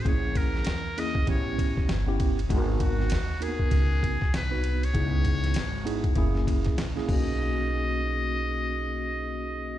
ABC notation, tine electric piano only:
X:1
M:4/4
L:1/16
Q:"Swing 16ths" 1/4=98
K:B
V:1 name="Tine electric piano"
[A,CEG]4 z2 [A,CEG]2 [B,CE=G]4 z [B,CEG]2 z | [B,DFGA]4 z2 [A,B,DFA]4- [A,B,DFA] z2 [B,DFB]2 z | [B,DEG]4 z2 [B,DEG]2 [A,CEG]4 z [A,CEG] [A,CDG]2- | [A,CDG]16 |]